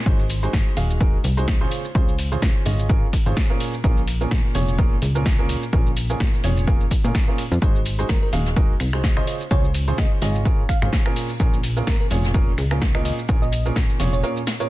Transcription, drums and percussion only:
0.06 kick, shaker
0.19 shaker
0.30 open hi-hat, shaker
0.43 shaker
0.53 kick, snare, shaker
0.77 open hi-hat, shaker
0.90 shaker
1.01 kick, shaker
1.24 open hi-hat, shaker
1.37 shaker
1.48 kick, snare, open hi-hat, shaker
1.71 open hi-hat, shaker
1.85 shaker
1.95 kick, shaker
2.08 shaker
2.19 open hi-hat, shaker
2.32 shaker
2.42 kick, snare, shaker
2.66 open hi-hat, shaker
2.79 shaker
2.90 kick, shaker
3.13 kick, open hi-hat, shaker
3.26 shaker
3.37 kick, snare, shaker
3.60 open hi-hat, shaker
3.74 shaker
3.84 kick, shaker
3.97 shaker
4.08 open hi-hat, shaker
4.21 shaker
4.31 kick, snare, shaker
4.55 open hi-hat, shaker
4.68 shaker
4.78 kick, shaker
5.02 open hi-hat, shaker
5.15 shaker
5.26 kick, snare, open hi-hat, shaker
5.49 open hi-hat, shaker
5.63 shaker
5.73 kick, shaker
5.86 shaker
5.97 open hi-hat, shaker
6.10 shaker
6.20 kick, snare, shaker
6.33 shaker
6.44 open hi-hat, shaker
6.57 shaker
6.67 kick, shaker
6.81 shaker
6.91 kick, open hi-hat, shaker
7.04 shaker
7.15 kick, snare, shaker
7.38 open hi-hat, shaker
7.52 shaker
7.62 kick, closed hi-hat, shaker
7.75 closed hi-hat, shaker
7.86 closed hi-hat, open hi-hat, shaker
7.99 closed hi-hat, shaker
8.09 kick, snare, closed hi-hat, shaker
8.33 closed hi-hat, open hi-hat, shaker
8.46 snare, shaker
8.56 kick, closed hi-hat, shaker
8.80 finger snap, closed hi-hat, open hi-hat, shaker
8.93 finger snap, closed hi-hat, shaker
9.04 kick, snare, closed hi-hat, open hi-hat, shaker
9.17 finger snap
9.27 closed hi-hat, open hi-hat, shaker
9.41 shaker
9.51 kick, closed hi-hat, shaker
9.64 shaker
9.74 closed hi-hat, open hi-hat, shaker
9.88 shaker
9.98 kick, snare, closed hi-hat, shaker
10.22 snare, closed hi-hat, open hi-hat, shaker
10.35 shaker
10.45 kick, closed hi-hat, shaker
10.69 finger snap, kick, closed hi-hat, open hi-hat, shaker
10.82 finger snap, shaker
10.93 kick, snare, closed hi-hat, shaker
11.06 finger snap
11.16 open hi-hat, shaker
11.30 shaker
11.40 kick, closed hi-hat, shaker
11.53 closed hi-hat, shaker
11.63 closed hi-hat, open hi-hat, shaker
11.76 closed hi-hat, shaker
11.87 kick, snare, closed hi-hat, shaker
12.11 closed hi-hat, open hi-hat, shaker
12.24 snare, shaker
12.34 kick, closed hi-hat, shaker
12.58 finger snap, closed hi-hat, open hi-hat, shaker
12.71 finger snap, closed hi-hat, shaker
12.82 kick, snare, closed hi-hat, open hi-hat, shaker
12.95 finger snap
13.05 open hi-hat, shaker
13.19 shaker
13.28 kick, closed hi-hat, shaker
13.42 shaker
13.52 closed hi-hat, open hi-hat, shaker
13.66 shaker
13.76 kick, snare, closed hi-hat, shaker
13.89 shaker
13.99 snare, closed hi-hat, open hi-hat, shaker
14.13 shaker
14.24 closed hi-hat, shaker
14.37 shaker
14.47 snare, closed hi-hat, open hi-hat, shaker
14.60 shaker

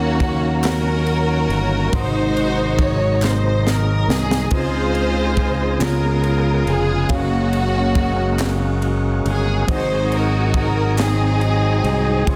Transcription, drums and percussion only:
0.20 kick, ride
0.64 snare, clap, ride
1.07 ride
1.50 ride
1.93 kick, ride
2.37 ride
2.79 kick, ride
3.22 snare, clap
3.67 snare
4.10 snare
4.31 snare
4.51 kick, ride
4.95 ride
5.37 kick, ride
5.81 snare, clap, ride
6.24 ride
6.67 ride
7.09 kick, ride
7.53 ride
7.95 kick, ride
8.39 snare, clap, ride
8.82 ride
9.26 ride
9.68 kick, ride
10.12 ride
10.54 kick, ride
10.98 snare, clap, ride
11.41 ride
11.84 ride
12.27 kick, ride

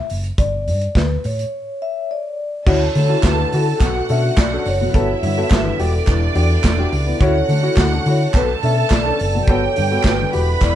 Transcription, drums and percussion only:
0.10 open hi-hat
0.24 closed hi-hat
0.38 kick, closed hi-hat
0.68 open hi-hat
0.81 closed hi-hat
0.95 kick, snare, clap, closed hi-hat
1.24 open hi-hat
1.39 closed hi-hat
2.67 kick, crash
2.95 open hi-hat
3.23 kick, snare, clap, closed hi-hat
3.25 clap
3.53 open hi-hat
3.80 kick, clap, closed hi-hat
4.09 open hi-hat
4.37 kick, snare, clap, closed hi-hat
4.66 open hi-hat
4.94 kick, closed hi-hat
5.23 open hi-hat
5.51 kick, snare, clap, closed hi-hat
5.53 clap
5.80 open hi-hat
6.07 kick, clap, closed hi-hat
6.35 open hi-hat
6.64 kick, snare, clap, closed hi-hat
6.93 open hi-hat
7.21 kick, closed hi-hat
7.49 open hi-hat
7.77 kick, snare, clap, closed hi-hat
7.79 clap
8.06 open hi-hat
8.34 kick, clap, closed hi-hat
8.63 open hi-hat
8.90 kick, snare, clap, closed hi-hat
8.92 clap
9.20 open hi-hat
9.47 kick, closed hi-hat
9.76 open hi-hat
10.04 kick, snare, clap, closed hi-hat
10.06 clap
10.33 open hi-hat
10.61 kick, clap, closed hi-hat

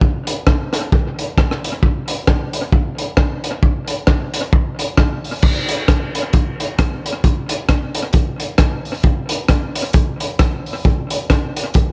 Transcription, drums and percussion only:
0.01 kick
0.27 closed hi-hat
0.47 kick, cross-stick
0.73 cross-stick, closed hi-hat
0.92 kick
1.19 closed hi-hat
1.38 kick, cross-stick
1.51 cross-stick
1.64 closed hi-hat
1.83 kick
2.08 closed hi-hat
2.27 kick, cross-stick
2.53 closed hi-hat
2.72 kick
2.98 closed hi-hat
3.17 kick, cross-stick
3.44 closed hi-hat
3.63 kick
3.87 closed hi-hat
4.07 kick, cross-stick
4.34 closed hi-hat
4.53 kick
4.79 closed hi-hat
4.97 kick, cross-stick
5.24 open hi-hat
5.42 kick, crash
5.69 closed hi-hat
5.88 kick, cross-stick, closed hi-hat
6.15 closed hi-hat
6.33 kick, closed hi-hat
6.60 closed hi-hat
6.79 kick, cross-stick, closed hi-hat
7.06 closed hi-hat
7.24 kick, closed hi-hat
7.49 closed hi-hat
7.69 kick, cross-stick, closed hi-hat
7.95 closed hi-hat
8.13 kick, closed hi-hat
8.40 closed hi-hat
8.58 kick, cross-stick, closed hi-hat
8.85 open hi-hat
9.03 kick, closed hi-hat
9.29 closed hi-hat
9.48 kick, cross-stick, closed hi-hat
9.75 closed hi-hat
9.93 kick, closed hi-hat
10.20 closed hi-hat
10.39 kick, cross-stick, closed hi-hat
10.66 open hi-hat
10.85 kick, closed hi-hat
11.10 closed hi-hat
11.30 kick, cross-stick, closed hi-hat
11.57 closed hi-hat
11.74 kick, closed hi-hat

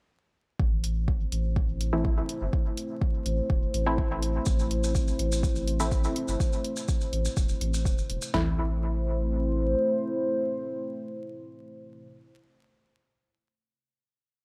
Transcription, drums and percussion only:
0.60 kick
0.84 closed hi-hat
1.08 kick
1.32 closed hi-hat
1.56 kick
1.81 closed hi-hat
2.05 kick
2.29 closed hi-hat
2.53 kick
2.77 closed hi-hat
3.01 kick
3.26 closed hi-hat
3.50 kick
3.74 closed hi-hat
3.98 kick
4.22 closed hi-hat
4.46 kick, maracas
4.59 maracas
4.71 closed hi-hat
4.84 maracas
4.95 kick, maracas
5.08 maracas
5.19 closed hi-hat
5.32 maracas
5.43 kick, maracas
5.56 maracas
5.68 closed hi-hat
5.80 maracas
5.91 kick, maracas
6.04 maracas
6.16 closed hi-hat
6.28 maracas
6.40 kick, maracas
6.53 maracas
6.64 closed hi-hat
6.76 maracas
6.88 kick, maracas
7.01 maracas
7.13 closed hi-hat
7.25 maracas
7.37 kick, maracas
7.49 maracas
7.61 closed hi-hat
7.74 maracas
7.85 kick, maracas
7.98 maracas
8.10 closed hi-hat
8.22 maracas
8.34 snare, floor tom

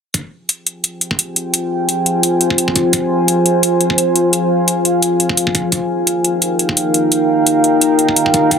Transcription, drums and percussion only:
0.14 kick, closed hi-hat
0.49 closed hi-hat
0.67 closed hi-hat
0.84 closed hi-hat
1.01 closed hi-hat
1.11 kick
1.19 closed hi-hat
1.36 closed hi-hat
1.54 closed hi-hat
1.89 closed hi-hat
2.06 closed hi-hat
2.23 closed hi-hat
2.41 closed hi-hat
2.50 kick
2.58 closed hi-hat
2.68 kick
2.76 kick, closed hi-hat
2.93 kick, closed hi-hat
3.28 closed hi-hat
3.46 closed hi-hat
3.63 closed hi-hat
3.81 closed hi-hat
3.90 kick
3.98 closed hi-hat
4.16 closed hi-hat
4.33 closed hi-hat
4.68 closed hi-hat
4.85 closed hi-hat
5.02 closed hi-hat
5.20 closed hi-hat
5.29 kick
5.37 closed hi-hat
5.47 kick
5.55 kick, closed hi-hat
5.72 kick, closed hi-hat
6.07 closed hi-hat
6.25 closed hi-hat
6.42 closed hi-hat
6.59 closed hi-hat
6.69 kick
6.77 closed hi-hat
6.94 closed hi-hat
7.12 closed hi-hat
7.47 closed hi-hat
7.64 closed hi-hat
7.81 closed hi-hat
7.99 closed hi-hat
8.09 kick
8.16 closed hi-hat
8.26 kick
8.34 kick, closed hi-hat
8.51 kick, closed hi-hat

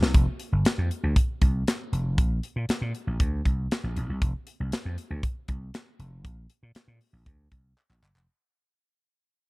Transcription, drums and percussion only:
0.03 snare
0.14 kick, closed hi-hat
0.40 closed hi-hat
0.65 snare, clap, closed hi-hat
0.91 closed hi-hat
1.16 kick, closed hi-hat
1.42 kick, closed hi-hat
1.68 snare, clap, closed hi-hat
1.93 closed hi-hat
2.18 kick, closed hi-hat
2.43 closed hi-hat
2.69 snare, clap, closed hi-hat
2.95 closed hi-hat
3.20 kick, closed hi-hat
3.45 kick, closed hi-hat
3.71 snare, clap, closed hi-hat
3.96 closed hi-hat
4.22 kick, closed hi-hat
4.47 closed hi-hat
4.72 snare, clap, closed hi-hat
4.98 closed hi-hat
5.23 kick, closed hi-hat
5.48 kick, closed hi-hat
5.74 snare, clap, closed hi-hat
6.00 closed hi-hat
6.25 kick, closed hi-hat
6.50 closed hi-hat
6.75 snare, clap, closed hi-hat
7.01 open hi-hat
7.26 kick, closed hi-hat
7.52 kick, closed hi-hat
7.78 clap
7.91 clap
8.04 clap
8.16 clap

